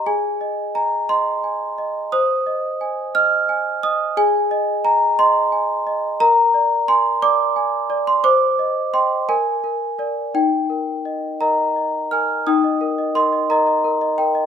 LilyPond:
\new Staff \with { instrumentName = "Celesta" } { \time 6/8 \key aes \major \tempo 4. = 58 << { aes''4 bes''8 c'''4. | ees'''4. f'''4 ees'''8 | \key ees \major aes''4 bes''8 c'''4. | bes''4 c'''8 d'''4~ d'''16 c'''16 |
d'''4 c'''8 aes''4. | g''4. <ees'' bes''>4 <aes'' f'''>8 | <g'' ees'''>4 <ees'' c'''>8 <ees'' bes''>4 <bes' g''>8 | } \\ { aes'8 ees''8 aes''8 ees''8 aes''8 ees''8 | c''8 ees''8 aes''8 ees''8 aes''8 ees''8 | aes'8 ees''8 aes''8 ees''8 aes''8 ees''8 | bes'8 d''8 aes''8 d''8 aes''8 d''8 |
c''8 ees''8 <ees'' g''>8 bes'8 bes'8 <bes' d''>8 | ees'8 bes'8 ees''8 bes'8 ees''8 bes'8 | ees'16 ees''16 bes'16 ees''16 bes'16 ees''16 bes'16 ees''16 bes'16 ees''8 ees''16 | } >> }